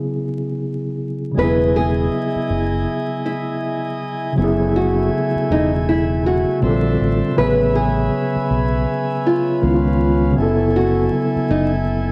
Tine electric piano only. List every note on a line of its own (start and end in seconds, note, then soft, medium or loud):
0.00 1.30 C#3 medium
0.00 1.31 F#3 medium
0.00 1.33 B3 medium
0.00 1.34 E4 medium
0.00 1.36 G#4 medium
1.31 4.30 C#3 medium
1.31 4.31 F#3 medium
1.37 4.33 B3 medium
1.37 4.34 E4 medium
1.43 4.36 G#4 medium
4.32 6.55 C#3 medium
4.32 6.57 F#3 medium
4.38 6.58 B3 medium
4.38 6.60 E4 medium
4.44 6.61 G#4 medium
6.60 6.69 C3 medium
6.60 7.37 G3 medium
6.60 7.37 C4 medium
6.65 7.39 D3 medium
6.65 7.38 F4 medium
6.65 7.39 A4 medium
7.31 9.55 C#3 medium
7.31 9.56 F#3 medium
7.37 9.58 B3 medium
7.37 9.59 E5 medium
7.43 9.61 G#4 medium
9.62 10.37 D#3 medium
9.62 10.38 G#3 medium
9.62 10.35 B3 medium
9.66 10.39 C#4 medium
9.66 9.73 E4 medium
9.74 10.43 F4 medium
10.31 12.12 C#3 medium
10.31 12.12 F#3 medium
10.37 12.12 B3 medium
10.37 12.12 E4 medium
10.42 12.12 A4 medium